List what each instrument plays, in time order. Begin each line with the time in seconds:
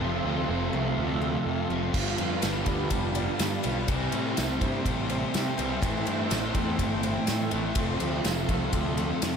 Already playing: analog synth pad A4 C6
0.00 picked electric bass F1, distorted electric guitar F2 C3 F3, overdriven electric guitar F3 A3 C4 F4, analog synth pad E5 F5
0.25 picked electric bass D2, distorted electric guitar C3 F3
0.48 picked electric bass F1, distorted electric guitar F2 C3 F3
0.73 picked electric bass C2, distorted electric guitar C3 F3, twelve-string acoustic guitar A3
0.97 picked electric bass D2, distorted electric guitar F2 C3 F3
1.21 distorted electric guitar C3 F3, twelve-string acoustic guitar A3
1.45 distorted electric guitar F2 C3 F3, picked electric bass F2
1.70 picked electric bass F1, distorted electric guitar C3 F3, twelve-string acoustic guitar E3
1.74 distorted electric guitar F2
1.94 picked electric bass G1, distorted electric guitar G2 D3 G3, overdriven electric guitar G2 D3 F3 B3 F4, twelve-string acoustic guitar F3, analog synth pad G4 D5 B5, kick, crash
2.18 picked electric bass F2, distorted electric guitar D3 G3, twelve-string acoustic guitar F3, ride
2.42 picked electric bass G1, distorted electric guitar G2 D3 G3, twelve-string acoustic guitar B3, snare, ride, tambourine
2.66 picked electric bass D2, distorted electric guitar D3 G3, twelve-string acoustic guitar D4, kick, ride
2.90 picked electric bass F1, distorted electric guitar G2 D3 G3, twelve-string acoustic guitar F3, kick, ride
3.15 distorted electric guitar D3 G3, twelve-string acoustic guitar D4, ride
3.39 distorted electric guitar G2 D3 G3, picked electric bass G2, twelve-string acoustic guitar B3, snare, ride, tambourine
3.63 picked electric bass B1, distorted electric guitar G2 D3 G3, twelve-string acoustic guitar F3, ride
3.88 picked electric bass C2, distorted electric guitar C3 G3 C4, overdriven electric guitar C3 G3 C4 E4, twelve-string acoustic guitar E3, analog synth pad A4 E5 G5 C6, kick, ride
4.12 picked electric bass A2, twelve-string acoustic guitar E3, distorted electric guitar G3 C4, ride
4.37 picked electric bass C2, distorted electric guitar C3 G3 C4, twelve-string acoustic guitar A3, snare, ride, tambourine
4.61 picked electric bass G2, distorted electric guitar G3 C4, twelve-string acoustic guitar C4, kick, ride
4.85 picked electric bass A1, distorted electric guitar C3 G3 C4, twelve-string acoustic guitar E3, kick, ride
5.10 distorted electric guitar G3 C4, twelve-string acoustic guitar C4, ride
5.34 distorted electric guitar C3 G3 C4, picked electric bass C3, twelve-string acoustic guitar A3, snare, ride, tambourine
5.58 picked electric bass C2, distorted electric guitar C3 G3 C4, twelve-string acoustic guitar E3, ride
5.81 picked electric bass A1, overdriven electric guitar A2 E3 A3 C4 E4, distorted electric guitar A2 E3 A3, twelve-string acoustic guitar E3, kick, ride
6.06 picked electric bass G2, twelve-string acoustic guitar E3, distorted electric guitar E3 A3, ride
6.30 picked electric bass A1, distorted electric guitar A2 E3 A3, twelve-string acoustic guitar A3, snare, ride, tambourine
6.54 picked electric bass E2, distorted electric guitar E3 A3, twelve-string acoustic guitar C4, kick, ride
6.78 picked electric bass G1, distorted electric guitar A2 E3 A3, twelve-string acoustic guitar E3, kick, ride
7.03 distorted electric guitar E3 A3, twelve-string acoustic guitar C4, ride
7.27 distorted electric guitar A2 E3 A3, picked electric bass A2, twelve-string acoustic guitar A3, snare, ride, tambourine
7.51 picked electric bass A1, twelve-string acoustic guitar E3, distorted electric guitar E3 A3, ride
7.55 distorted electric guitar A2
7.75 picked electric bass F1, distorted electric guitar F2 C3 F3, overdriven electric guitar F3 A3 C4 F4, analog synth pad E5 F5, kick, ride
7.99 picked electric bass D2, distorted electric guitar C3 F3, ride
8.24 picked electric bass F1, distorted electric guitar F2 C3 F3, snare, ride, tambourine
8.48 picked electric bass C2, distorted electric guitar C3 F3, twelve-string acoustic guitar A3, kick, ride
8.72 picked electric bass D2, distorted electric guitar F2 C3 F3, kick, ride
8.96 distorted electric guitar C3 F3, twelve-string acoustic guitar A3, ride
9.21 distorted electric guitar F2 C3 F3, picked electric bass F2, snare, ride, tambourine